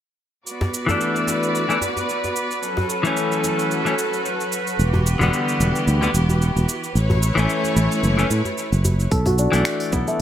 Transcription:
0.46 string section B3 F#4 B4 D5, synth texture B4, cabasa
0.61 djembe slap, djembe bass
0.74 cabasa
0.86 clean electric guitar E3 A3 D4, djembe bass, cabasa
1.01 cabasa
1.16 cabasa
1.27 djembe slap, cabasa
1.43 cabasa
1.55 cabasa
1.69 clean electric guitar E3 A3 D4, cabasa
1.81 djembe tone, cabasa
1.97 djembe tone, cabasa
2.09 cabasa
2.24 djembe tone, cabasa
2.36 cabasa
2.51 cabasa
2.63 string section F#3 C#4 F#4 A4, cabasa
2.77 djembe slap, djembe bass
2.90 cabasa
3.03 clean electric guitar E3 A3 C#4, cabasa
3.17 cabasa
3.32 cabasa
3.44 djembe slap, cabasa
3.59 cabasa
3.71 cabasa
3.85 clean electric guitar E3 A3 C#4, cabasa
3.99 cabasa
4.14 cabasa
4.26 cabasa
4.41 cabasa
4.52 cabasa
4.67 cabasa
4.79 fretless electric bass E1, string section E3 B3 G4, cabasa
4.93 djembe slap, djembe bass
5.07 cabasa
5.19 fretless electric bass E1, clean electric guitar D3 G3 B3, djembe bass, cabasa
5.33 cabasa
5.49 cabasa
5.60 fretless electric bass E1, djembe slap, cabasa
5.76 cabasa
5.87 fretless electric bass D2, cabasa
6.01 clean electric guitar D3 G3 B3, cabasa
6.14 fretless electric bass E1, djembe tone, cabasa
6.29 djembe tone, cabasa
6.42 cabasa
6.56 fretless electric bass E1, djembe tone, cabasa
6.69 cabasa
6.84 cabasa
6.95 fretless electric bass A1, string section A3 E4 B4 C#5, cabasa
7.10 djembe slap, djembe bass
7.23 cabasa
7.35 fretless electric bass A1, clean electric guitar E3 A3, cabasa
7.39 clean electric guitar C#4
7.50 cabasa
7.64 djembe tone, cabasa
7.76 fretless electric bass A1, djembe slap, cabasa
7.92 cabasa
8.03 fretless electric bass F#1, cabasa
8.17 clean electric guitar E3 A3 C#4, cabasa
8.30 fretless electric bass A2, cabasa
8.45 djembe tone, cabasa
8.58 cabasa
8.72 fretless electric bass F#1, cabasa
8.85 djembe bass, cabasa
9.00 cabasa
9.11 fretless electric bass B1, kora A4, kick, open hi-hat, cabasa
9.26 kora F#4, open hi-hat, djembe slap, djembe bass
9.38 kora D4, cabasa
9.52 fretless electric bass B1, clean electric guitar E3 A3, open hi-hat, cabasa
9.56 clean electric guitar D4
9.65 finger snap, open hi-hat, cabasa
9.80 open hi-hat
9.93 fretless electric bass B1, kora B3, kick, djembe slap, cabasa
10.08 kora A3, cabasa

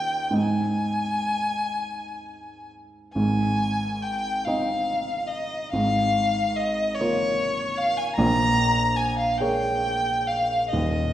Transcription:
Already playing: grand piano D#2 C#4 F4 D#5, violin G5
0.31 grand piano G#2 C4 D#4 D#5
0.37 violin G#5
3.14 grand piano G#1 G#2, violin G#5
4.02 violin G5
4.45 grand piano C4 D#4 D#5, violin F5
5.28 violin D#5
5.72 grand piano G#1 G#2, violin F5
6.56 violin D#5
6.95 violin C#5
7.00 grand piano A#3 F4 C#5
7.77 violin F5
7.97 violin G#5
8.14 grand piano A#1, violin A#5
8.19 grand piano A#2
8.96 violin G#5
9.18 violin F5
9.38 grand piano A#3 G#4 C#5, violin G5
10.27 violin F5
10.69 grand piano D#1 D#2, violin D#5

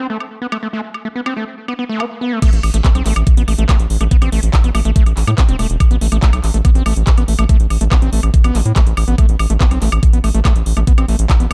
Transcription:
0.10 acid bass A3
0.20 high woodblock
0.42 acid bass B3
0.52 acid bass A3, high woodblock
0.63 acid bass A3
0.73 acid bass A3
0.94 high woodblock
1.05 acid bass A3
1.16 acid bass B3
1.26 acid bass C4, high woodblock
1.37 acid bass A3
1.68 acid bass B3, high woodblock
1.79 acid bass B3
1.89 acid bass A3
2.00 acid bass B3, high woodblock
2.21 acid bass B3
2.32 acid bass A3
2.42 acid bass A3, kick, closed hi-hat, crash, high woodblock
2.53 analog synth bass A1, closed hi-hat
2.63 analog synth bass A1, open hi-hat, high woodblock
2.74 analog synth bass A1, acid bass A3, closed hi-hat
2.85 acid bass B3, kick, clap, closed hi-hat
2.95 analog synth bass B1, acid bass C4, closed hi-hat, high woodblock
3.06 analog synth bass A1, acid bass A3, clap, open hi-hat
3.16 analog synth bass A1, closed hi-hat, high woodblock
3.27 kick, closed hi-hat
3.37 analog synth bass A1, acid bass B3, closed hi-hat
3.48 analog synth bass A1, acid bass A3, open hi-hat, high woodblock
3.58 analog synth bass A1, acid bass A3, closed hi-hat
3.69 acid bass A3, kick, clap, closed hi-hat, high woodblock
3.80 analog synth bass A1, closed hi-hat
3.90 analog synth bass A1, open hi-hat
4.01 analog synth bass A1, acid bass A3, closed hi-hat, high woodblock
4.11 acid bass B3, kick, closed hi-hat
4.22 analog synth bass A1, acid bass C4, closed hi-hat, high woodblock
4.32 analog synth bass A1, acid bass A3, open hi-hat
4.43 analog synth bass A1, closed hi-hat
4.54 kick, clap, closed hi-hat, high woodblock
4.64 analog synth bass A1, acid bass B3, closed hi-hat
4.75 analog synth bass A1, acid bass A3, open hi-hat, high woodblock
4.85 analog synth bass A1, acid bass A3, closed hi-hat
4.96 acid bass A3, kick, closed hi-hat
5.06 analog synth bass A1, closed hi-hat, high woodblock
5.17 analog synth bass A1, clap, open hi-hat
5.27 analog synth bass A2, acid bass A3, closed hi-hat, high woodblock
5.38 acid bass B3, kick, clap, closed hi-hat
5.49 analog synth bass E1, acid bass C4, closed hi-hat
5.59 analog synth bass E1, acid bass A3, open hi-hat, high woodblock
5.70 analog synth bass E1, closed hi-hat
5.80 kick, closed hi-hat, high woodblock
5.91 analog synth bass A1, acid bass B3, closed hi-hat
6.01 analog synth bass A1, acid bass A3, open hi-hat
6.12 analog synth bass A1, acid bass A3, closed hi-hat, high woodblock
6.22 acid bass A3, kick, clap, closed hi-hat
6.33 analog synth bass B1, closed hi-hat, high woodblock
6.44 analog synth bass A1, clap, open hi-hat
6.54 analog synth bass A1, acid bass A3, closed hi-hat
6.65 acid bass B3, kick, closed hi-hat, high woodblock
6.75 analog synth bass A1, acid bass C4, closed hi-hat
6.86 analog synth bass A1, acid bass A3, open hi-hat, high woodblock
6.96 analog synth bass A1, closed hi-hat
7.07 kick, clap, closed hi-hat
7.18 analog synth bass A1, acid bass B3, closed hi-hat, high woodblock
7.28 analog synth bass A1, acid bass A3, open hi-hat
7.39 analog synth bass A1, acid bass A3, closed hi-hat, high woodblock
7.49 acid bass A3, kick, closed hi-hat
7.60 analog synth bass A1, closed hi-hat
7.70 analog synth bass A1, open hi-hat, high woodblock
7.81 analog synth bass A1, acid bass A3, closed hi-hat
7.92 acid bass B3, kick, clap, closed hi-hat, high woodblock
8.02 analog synth bass A1, acid bass C4, closed hi-hat
8.13 analog synth bass A1, acid bass A3, open hi-hat
8.23 analog synth bass A1, closed hi-hat, high woodblock
8.34 kick, closed hi-hat
8.44 analog synth bass A1, acid bass B3, closed hi-hat, high woodblock
8.55 analog synth bass A1, acid bass G#3, clap, open hi-hat
8.65 analog synth bass A2, closed hi-hat
8.76 acid bass A3, kick, clap, closed hi-hat, high woodblock
8.87 analog synth bass A1, closed hi-hat
8.97 analog synth bass A1, open hi-hat, high woodblock
9.08 analog synth bass A1, acid bass B3, closed hi-hat
9.18 acid bass A3, kick, closed hi-hat, high woodblock
9.29 analog synth bass A1, closed hi-hat
9.39 analog synth bass A1, open hi-hat, high woodblock
9.50 analog synth bass A1, acid bass A3, closed hi-hat
9.61 acid bass B3, kick, clap, closed hi-hat
9.71 analog synth bass B1, acid bass C4, closed hi-hat, high woodblock
9.82 analog synth bass A1, acid bass A3, clap, open hi-hat
9.92 analog synth bass A1, closed hi-hat, high woodblock
10.03 kick, closed hi-hat
10.13 analog synth bass A1, acid bass B3, closed hi-hat
10.24 analog synth bass A1, acid bass A3, open hi-hat, high woodblock
10.34 analog synth bass A1, acid bass A3, closed hi-hat
10.45 acid bass A3, kick, clap, closed hi-hat, high woodblock
10.56 analog synth bass A1, closed hi-hat
10.66 analog synth bass A1, open hi-hat
10.77 analog synth bass A1, acid bass A3, closed hi-hat, high woodblock
10.87 acid bass B3, kick, closed hi-hat
10.98 analog synth bass A1, acid bass C4, closed hi-hat, high woodblock
11.08 analog synth bass A1, acid bass A3, open hi-hat
11.19 analog synth bass A1, closed hi-hat
11.30 kick, clap, closed hi-hat, high woodblock
11.40 analog synth bass A1, acid bass B3, closed hi-hat

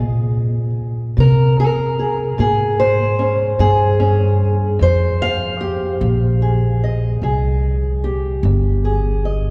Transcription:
Already playing: steel-string acoustic guitar A#2, upright bass A#2
1.17 steel-string acoustic guitar A#2 A#4, upright bass C3
1.60 steel-string acoustic guitar A#4
1.99 steel-string acoustic guitar G#4
2.38 upright bass G#2, steel-string acoustic guitar A#2 G#4
2.80 steel-string acoustic guitar C5
3.19 steel-string acoustic guitar C#4
3.59 upright bass G2, steel-string acoustic guitar A#2 G#4
4.00 steel-string acoustic guitar C#4
4.79 steel-string acoustic guitar F2 C5, upright bass F2
5.22 steel-string acoustic guitar F5
5.61 steel-string acoustic guitar G4
6.01 upright bass A#1, steel-string acoustic guitar F2
6.42 steel-string acoustic guitar G#4
6.84 steel-string acoustic guitar D#5
7.22 upright bass C2, steel-string acoustic guitar F2 G#4
8.04 steel-string acoustic guitar G4
8.43 upright bass G1, steel-string acoustic guitar F2
8.85 steel-string acoustic guitar G#4
9.25 steel-string acoustic guitar D#5

